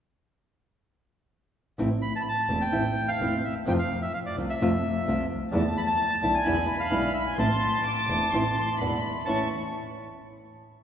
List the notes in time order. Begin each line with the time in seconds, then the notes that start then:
1.78 A1 E3 A3 C4 E4
2.02 B5
2.16 A5
2.21 B5
2.29 A5
2.49 E1 E3 A3 C4 E4
2.61 G5
2.72 A1 E3 A3 C4 E4
3.08 F5
3.20 E1 E3 A3 C4 E4
3.44 E5
3.66 F2 C3 F3 A3 C4 F4 G5
3.79 F5
4.02 E5
4.14 F5
4.26 D5
4.36 C2 C3 F3 A3 C4 F4
4.50 E5
4.59 F2 C3 F3 A3 C4 F4
5.06 C2 C3 F3 A3 C4 F4
5.52 E2 D3 A3 B3 E4 A5
5.77 B5
5.87 A5
6.22 B1 D3 A3 B3 E4
6.35 G#5
6.45 E2 B2 D3 G#3 B3 E4 B5
6.80 F5
6.91 B1 B2 D3 G#3 B3 E4
7.14 E5
7.27 G#5
7.37 A1 E3 A3 C4 E4 A5 C6
7.85 D6
8.08 E1 E3 A3 C4 E4
8.31 A1 E3 A3 C4 E4 C6
8.55 C6
8.78 E2 B2 D3 G#3 B3 E4 B5
9.26 A1 A2 E3 A3 C#4 E4 A5 C#6